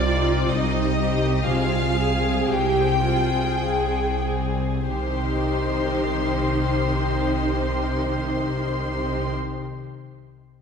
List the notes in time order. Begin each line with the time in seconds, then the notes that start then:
Already playing: C2 C3 G3 C4 D#4 F4 G4 C5 D5
0.06 C4 D#4
0.22 G4
0.51 C2 D#4 D#5
0.83 G4
0.98 C4 D#4 G4
1.14 C5
1.46 C2 C3 C4 F4 G#4 F5
1.80 C4
1.97 C4 G#4
2.14 G#3
2.47 C2 F4 G4 G5
2.84 C5
3.02 C4 F4 G#4
3.21 G#4
3.60 C2 G#4 F5
4.02 G#4
4.24 C4 G#4
4.46 C5
4.88 C2 C3 D#3 D#4 G4 C5 C6
4.95 G3
5.03 C4
5.10 D#4
5.17 C5
5.24 D#5